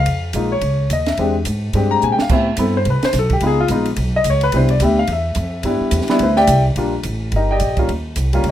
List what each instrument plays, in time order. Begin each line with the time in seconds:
Already playing: grand piano F5
0.06 upright bass F2, kick, ride
0.33 upright bass A#1, grand piano G#3 A#3 D#4 F4, kick, hi-hat pedal, ride
0.52 grand piano C#5
0.61 upright bass C#2, kick, ride
0.90 upright bass D#2, grand piano D#5, kick, hi-hat pedal, ride
1.06 grand piano E5, snare, ride
1.17 upright bass E2, grand piano G#3 C4 D4 G4, kick, ride
1.45 upright bass G#2, kick, hi-hat pedal, ride
1.73 upright bass G2, grand piano G#3 C4 D4 G4, kick, ride
1.91 grand piano A#5
2.02 upright bass A#2, grand piano G#5, hi-hat pedal
2.12 grand piano G5
2.19 grand piano F5, muted upright bass stroke, snare
2.29 upright bass A2, grand piano B3 C4 E4 G4 E5, kick, crash
2.57 upright bass G2, grand piano B3 C4 E4 A4, kick, hi-hat pedal, ride
2.77 grand piano C5
2.85 upright bass C2, kick, ride
2.90 grand piano B4
3.03 grand piano C5, muted upright bass stroke, snare, ride
3.13 upright bass B1, kick, snare, hi-hat pedal, ride
3.19 grand piano A4
3.30 grand piano G4, kick, ride
3.41 upright bass C#2, grand piano G#3 B3 D#4 F4, kick, ride
3.47 grand piano G#4
3.60 grand piano F4
3.68 upright bass A#1, grand piano G#3 B3 D#4 F4, kick, hi-hat pedal, ride
3.85 ride
3.96 upright bass B1, kick, ride
4.16 grand piano D#5
4.24 upright bass C#2, kick, hi-hat pedal, ride
4.30 grand piano C#5
4.41 grand piano B4, ride
4.52 upright bass C2, grand piano G3 B3 D4 E4, kick, ride
4.57 grand piano C5
4.69 grand piano D5, ride
4.80 upright bass D2, grand piano G3 B3 D4 G4, kick, hi-hat pedal, ride
4.84 grand piano E5
4.99 grand piano F5
5.07 upright bass E2, kick, ride
5.12 grand piano E5
5.35 upright bass F2, kick, hi-hat pedal, ride
5.63 upright bass G2, grand piano G3 B3 D4 E4, kick, ride
5.80 muted upright bass stroke
5.91 upright bass E2, kick, hi-hat pedal, ride
6.01 snare
6.08 grand piano G3 B3 D4 E4, muted upright bass stroke, snare, ride
6.19 upright bass D2, grand piano C5 E5, kick, ride
6.23 grand piano E4 B4
6.36 grand piano G4 D5 E5 G5, snare
6.47 upright bass C2, kick, hi-hat pedal, ride
6.76 upright bass A#1, grand piano G3 A#3 D4 F4, kick, ride
7.03 upright bass A1, kick, hi-hat pedal, ride
7.32 upright bass G1, kick, ride
7.36 grand piano D#4 G4 A#4 D#5
7.51 grand piano G4 D5 D#5 G5
7.60 upright bass A#1, kick, hi-hat pedal, ride
7.77 grand piano G3 A#3 C#4 F4, kick, ride
7.89 upright bass D#2, kick, ride
8.16 upright bass C2, kick, hi-hat pedal, ride
8.33 grand piano G3 A#3 C#4 F4, ride
8.44 upright bass C#2, kick, ride